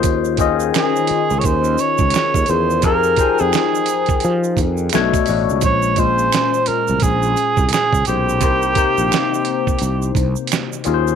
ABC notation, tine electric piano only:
X:1
M:4/4
L:1/8
Q:"Swing 16ths" 1/4=86
K:Cphr
V:1 name="Tine electric piano"
[E,DFAc] [E,DFAe]3 z3 [E,DFAc] | [F,EGAB] [F,EAcg]3 z2 [=B,,=A,=D^c] [B,,A,D^F] | [B,,A,Dc] [B,,A,Dc]3 z3 [B,,A,Dc] | [C,B,Ec] [C,B,Ec]3 z3 [E,DFABc] |]